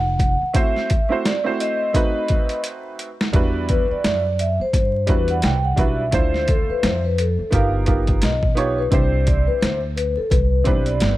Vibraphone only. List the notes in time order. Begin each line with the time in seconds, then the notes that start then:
Already playing: F#5
0.56 E5
1.26 D5
1.60 D#5
3.70 B4
3.91 D5
4.41 E5
4.61 C5
5.11 B4
5.31 F#5
5.44 G5
5.65 F#5
5.80 E5
6.14 C5
6.49 A4
6.70 B4
6.84 C5
7.05 B4
7.20 A4
7.55 F5
8.24 D#5
8.58 C#5
8.78 B4
8.92 C5
9.26 D5
9.47 B4
9.61 C5
9.96 B4
10.17 A4
10.30 B4
10.66 C5
10.87 D5